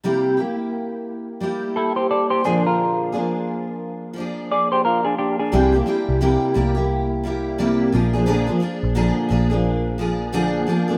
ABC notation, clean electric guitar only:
X:1
M:4/4
L:1/16
Q:"Swing 16ths" 1/4=87
K:Cmix
V:1 name="Clean electric guitar"
z8 z2 [EA] [Gc] [Ad] [Gc] [D_A] [FB]- | [FB]4- [FB] z4 z [_Ad] [Gc] [FB] [DA] [DG] [DA]- | [D_A] z12 z3 | z16 |]